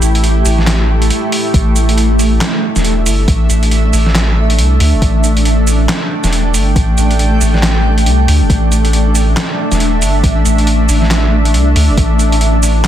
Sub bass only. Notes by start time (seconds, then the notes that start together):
0.02 A1
0.45 A1
1.54 A1
2.76 E1
3.06 G1
3.28 A1
3.50 A1
3.93 A1
4.58 C2
4.80 D2
4.93 E1
5.02 A1
6.24 E1
6.54 G1
6.76 A1
6.98 A1
7.41 A1
8.06 C2
8.28 D2
8.41 E1
8.50 A1
9.71 E1
10.02 G1
10.24 A1
10.45 A1
10.89 A1
11.54 C2
11.76 D2
11.89 E1
11.98 A1